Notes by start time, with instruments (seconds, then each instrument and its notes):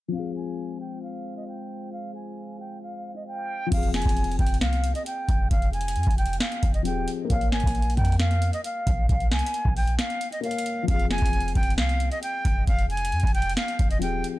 0.08 grand piano F3 C4
0.14 brass ensemble G#3 F4 C5 F5, grand piano F4, flute F5
0.19 grand piano G#4
0.36 flute G#5
0.80 flute G5
1.03 flute F5
1.37 flute D#5
1.48 flute G5
1.92 flute F5
2.15 flute G#5
2.60 flute G5
2.82 flute F5
3.16 flute D#5
3.27 flute G5
3.66 grand piano F3 C4
3.72 808-style bass F1, grand piano F4, flute F5, kick, closed hi-hat, crash
3.77 grand piano G#4
3.83 closed hi-hat
3.94 flute G#5, snare, closed hi-hat
4.02 808-style bass F1, kick, closed hi-hat
4.09 closed hi-hat
4.17 closed hi-hat
4.24 closed hi-hat
4.32 closed hi-hat
4.39 808-style bass F1, flute G5, kick, closed hi-hat
4.47 closed hi-hat
4.54 closed hi-hat
4.61 808-style bass C2, flute F5, snare, closed hi-hat
4.73 closed hi-hat
4.84 closed hi-hat
4.95 flute D#5, closed hi-hat
5.06 flute G5, closed hi-hat
5.28 808-style bass F1, kick, closed hi-hat
5.51 808-style bass F1, flute F5, kick, closed hi-hat
5.62 closed hi-hat
5.73 flute G#5, closed hi-hat
5.81 closed hi-hat
5.88 closed hi-hat
5.96 808-style bass F2, closed hi-hat
6.03 808-style bass F1, kick, closed hi-hat
6.11 closed hi-hat
6.18 flute G5, closed hi-hat
6.26 closed hi-hat
6.33 closed hi-hat
6.40 flute F5, snare, closed hi-hat
6.52 closed hi-hat
6.63 808-style bass F1, kick, closed hi-hat
6.74 flute D#5, closed hi-hat
6.83 808-style bass D#1, grand piano F3 C4 G4, flute G5, closed hi-hat
6.88 grand piano G#4
7.08 closed hi-hat
7.25 grand piano A#3 A#4
7.30 808-style bass A#1, grand piano C#5, flute F5, kick, closed hi-hat
7.35 grand piano F5
7.41 closed hi-hat
7.52 808-style bass G#1, flute G#5, snare, closed hi-hat
7.60 808-style bass A#1, kick, closed hi-hat
7.67 closed hi-hat
7.75 closed hi-hat
7.82 closed hi-hat
7.90 closed hi-hat
7.97 808-style bass F2, flute G5, kick, closed hi-hat
8.05 closed hi-hat
8.12 closed hi-hat
8.19 flute F5, snare, closed hi-hat
8.31 closed hi-hat
8.42 closed hi-hat
8.53 flute D#5, closed hi-hat
8.64 flute F5, closed hi-hat
8.87 808-style bass A#1, kick, closed hi-hat
9.09 808-style bass A#1, flute F5, kick, closed hi-hat
9.20 closed hi-hat
9.32 808-style bass C2, flute G#5, snare, closed hi-hat
9.39 closed hi-hat
9.46 closed hi-hat
9.54 closed hi-hat
9.65 808-style bass A#1, kick
9.77 flute G5, open hi-hat
9.87 closed hi-hat
9.99 flute F5, snare, closed hi-hat
10.10 closed hi-hat
10.21 closed hi-hat
10.32 flute D#5, closed hi-hat
10.41 grand piano A#3 A#4 C#5, flute F5, closed hi-hat
10.46 grand piano F5
10.51 closed hi-hat
10.58 closed hi-hat
10.66 closed hi-hat
10.83 grand piano F3 C4
10.88 808-style bass F1, grand piano F4, flute F5, kick, closed hi-hat
10.94 grand piano G#4
10.99 closed hi-hat
11.11 flute G#5, snare, closed hi-hat
11.18 808-style bass F1, kick, closed hi-hat
11.26 closed hi-hat
11.33 closed hi-hat
11.41 closed hi-hat
11.48 closed hi-hat
11.55 808-style bass F1, flute G5, kick, closed hi-hat
11.63 closed hi-hat
11.70 closed hi-hat
11.78 808-style bass C2, flute F5, snare, closed hi-hat
11.89 closed hi-hat
12.00 closed hi-hat
12.11 flute D#5, closed hi-hat
12.23 flute G5, closed hi-hat
12.45 808-style bass F1, kick, closed hi-hat
12.67 808-style bass F1, flute F5, kick, closed hi-hat
12.79 closed hi-hat
12.90 flute G#5, closed hi-hat
12.97 closed hi-hat
13.05 closed hi-hat
13.12 808-style bass F2, closed hi-hat
13.20 808-style bass F1, kick, closed hi-hat
13.27 closed hi-hat
13.34 flute G5, closed hi-hat
13.42 closed hi-hat
13.49 closed hi-hat
13.57 flute F5, snare, closed hi-hat
13.68 closed hi-hat
13.79 808-style bass F1, kick, closed hi-hat
13.91 flute D#5, closed hi-hat
13.99 808-style bass D#1, grand piano F3 C4 G4, flute G5, closed hi-hat
14.04 grand piano G#4
14.24 closed hi-hat